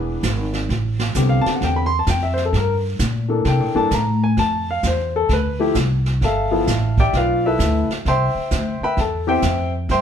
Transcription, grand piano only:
0.00 0.20 E3 medium
0.00 0.20 B3 medium
0.00 0.20 D4 medium
0.00 0.20 G#4 medium
0.00 0.21 B4 medium
1.15 1.85 D3 medium
1.15 1.86 B3 soft
1.15 1.86 C4 medium
1.15 1.86 G4 medium
1.29 1.44 F5 medium
1.41 1.51 A5 loud
1.55 1.62 F#5 medium
1.64 1.77 G5 medium
1.76 1.91 B5 medium
1.86 1.96 C6 loud
1.99 2.07 A5 medium
2.10 2.23 G5 medium
2.23 2.37 E5 medium
2.34 2.43 C5 medium
2.45 2.53 A4 medium
2.57 2.74 A#4 medium
3.29 3.72 E3 medium
3.29 3.72 A#3 medium
3.29 3.73 D4 soft
3.29 3.73 A4 medium
3.48 3.76 G5 medium
3.75 3.89 E3 medium
3.75 3.90 A#3 medium
3.75 3.90 D4 medium
3.75 3.90 A4 medium
3.75 3.92 A5 medium
3.94 4.22 A#5 loud
4.24 4.38 G#5 medium
4.39 4.67 A5 loud
4.71 4.84 F5 medium
4.87 5.15 C5 medium
5.16 5.30 A4 medium
5.33 5.61 B4 medium
5.59 5.74 F3 medium
5.59 5.74 A3 medium
5.59 5.74 E4 medium
5.59 5.74 G4 medium
6.24 6.51 A4 medium
6.24 6.95 E5 medium
6.24 6.95 F5 medium
6.24 6.95 A5 medium
6.51 6.66 F3 medium
6.51 6.66 B3 medium
6.51 6.66 E4 medium
6.51 6.66 A4 medium
7.00 7.14 G4 medium
7.00 7.14 D5 medium
7.00 7.14 E5 medium
7.00 7.14 G5 loud
7.17 7.45 F4 medium
7.17 7.45 B4 medium
7.17 7.45 D5 medium
7.17 7.44 F5 medium
7.46 7.88 E4 medium
7.46 7.88 A4 medium
7.46 7.88 B4 medium
7.46 7.88 E5 medium
8.08 8.79 C5 medium
8.08 8.79 E5 medium
8.08 8.79 G5 medium
8.08 8.79 C6 loud
8.83 8.98 B4 medium
8.83 8.99 E5 medium
8.83 8.98 G5 medium
8.83 8.98 B5 loud
9.00 9.29 A4 medium
9.00 9.28 A5 medium
9.27 9.42 E3 medium
9.27 9.42 B3 medium
9.27 9.42 C4 medium
9.27 9.42 G4 medium
9.27 9.72 C5 medium
9.27 9.71 E5 medium
9.27 9.71 G5 loud
9.91 10.01 C5 medium
9.91 10.01 E5 medium
9.91 10.01 G5 medium
9.91 10.01 C6 loud

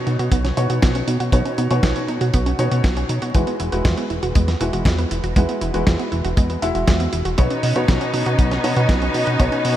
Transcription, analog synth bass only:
0.07 0.17 B2 medium
0.19 0.29 B2 medium
0.32 0.52 B1 loud
0.57 0.67 B2 medium
0.70 0.80 B2 loud
0.83 1.03 B1 loud
1.08 1.18 B2 medium
1.20 1.30 B2 medium
1.32 1.43 B1 loud
1.58 1.68 B2 medium
1.71 1.81 B2 medium
1.83 1.93 B1 loud
2.08 2.18 B2 medium
2.21 2.31 B2 medium
2.34 2.54 B1 loud
2.59 2.69 B2 medium
2.71 2.81 B2 loud
2.84 3.04 B1 loud
3.09 3.19 B2 medium
3.22 3.32 B2 medium
3.35 3.45 E2 loud
3.60 3.70 E1 medium
3.72 3.82 E1 medium
3.85 3.95 E2 loud
4.10 4.20 E1 medium
4.23 4.33 E1 medium
4.36 4.55 E2 loud
4.61 4.71 E1 medium
4.73 4.83 E1 loud
4.85 5.06 E2 loud
5.11 5.21 E1 medium
5.24 5.34 E1 medium
5.36 5.46 E2 loud
5.62 5.71 E1 medium
5.74 5.84 E1 medium
5.87 5.97 E2 loud
6.12 6.22 E1 medium
6.25 6.34 E1 medium
6.37 6.57 E2 loud
6.62 6.72 E1 medium
6.75 6.85 E1 medium
6.88 7.08 E2 loud
7.13 7.23 E1 medium
7.25 7.35 E1 medium
7.39 7.48 B1 loud
7.63 7.73 B2 medium
7.76 7.86 B2 medium
7.89 7.98 B1 loud
8.14 8.24 B2 medium
8.26 8.36 B2 medium
8.39 8.59 B1 loud
8.64 8.74 B2 medium
8.76 8.87 B2 loud
8.89 9.09 B1 loud
9.14 9.24 B2 medium
9.27 9.37 B2 medium
9.40 9.50 B1 loud
9.65 9.75 B2 medium

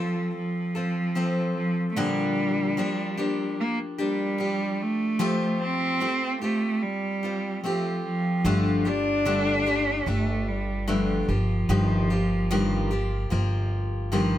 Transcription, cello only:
0.00 0.35 F3 medium
0.36 1.53 F3 medium
1.57 1.89 F3 medium
1.91 1.98 A3 medium
1.97 3.59 G3 loud
3.60 3.78 A#3 medium
4.00 4.83 G3 medium
4.82 5.61 A3 medium
5.62 6.39 C4 loud
6.42 6.84 A3 medium
6.82 7.63 G3 medium
7.64 8.02 F3 medium
8.05 8.89 F3 medium
8.88 10.11 D4 loud
10.09 10.50 A3 medium
10.48 10.91 G3 medium
10.89 11.28 F3 medium
11.29 13.68 F3 medium
14.13 14.38 F3 medium

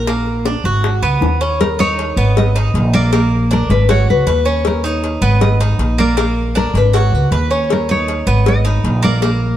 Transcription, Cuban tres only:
0.07 0.44 A#3 medium
0.46 0.64 D4 medium
0.65 1.02 F#4 medium
1.03 1.40 B3 medium
1.41 1.59 C#4 medium
1.79 2.16 D#4 medium
2.17 2.54 B3 medium
2.56 2.92 D#4 medium
2.94 3.11 A#3 loud
3.13 3.50 A#3 medium
3.51 3.88 D4 medium
3.89 4.26 F#4 medium
4.27 4.45 B4 medium
4.45 4.83 C#4 medium
4.84 5.21 D#4 medium
5.22 5.59 B3 medium
5.60 5.97 D#4 medium
5.98 6.16 A#3 loud
6.17 6.54 A#3 medium
6.55 6.92 D4 medium
6.93 7.30 F#4 medium
7.32 7.50 B4 medium
7.51 7.88 C#4 medium
7.89 8.26 D#4 medium
8.27 8.64 B3 medium
8.65 9.02 D#4 medium
9.03 9.21 A#3 loud
9.22 9.57 A#3 medium

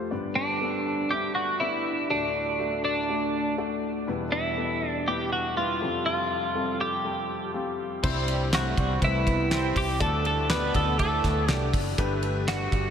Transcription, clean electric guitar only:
0.36 1.12 D4 medium
1.11 1.35 G4 medium
1.35 1.61 F#4 medium
1.60 2.10 E4 medium
2.10 2.83 D4 medium
2.85 3.55 D4 medium
4.32 4.89 E4 medium
4.89 5.09 D4 medium
5.08 5.32 G4 medium
5.33 5.57 F#4 medium
5.57 6.05 F4 medium
6.06 6.81 F4 medium
6.81 7.51 G4 medium
8.55 9.00 F#4 medium
9.04 9.80 E4 medium
9.78 10.01 G4 loud
10.01 10.25 A4 loud
10.26 10.50 A4 medium
10.50 10.75 B4 loud
10.76 10.98 A4 medium
11.00 11.52 A4 medium
11.52 11.70 G4 medium
12.48 12.90 F#4 medium

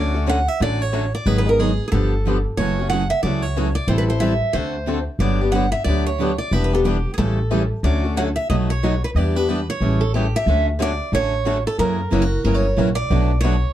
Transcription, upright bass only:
0.00 0.46 D2 medium
0.60 1.13 A1 medium
1.26 1.78 G#1 medium
1.92 2.45 G1 medium
2.58 3.10 F#1 medium
3.23 3.76 C#2 medium
3.88 4.41 A1 medium
4.54 5.07 D2 medium
5.19 5.72 G1 medium
5.85 6.38 D2 medium
6.51 7.04 E1 medium
7.18 7.70 A1 medium
7.83 8.36 D2 medium
8.50 9.02 B1 medium
9.15 9.67 E2 medium
9.81 10.33 A1 medium
10.46 10.99 D2 medium
11.12 11.65 A1 medium
11.79 12.05 F#2 medium
12.12 12.40 F#1 medium
12.45 12.72 G1 medium
12.77 13.05 A#1 medium
13.10 13.63 B1 medium

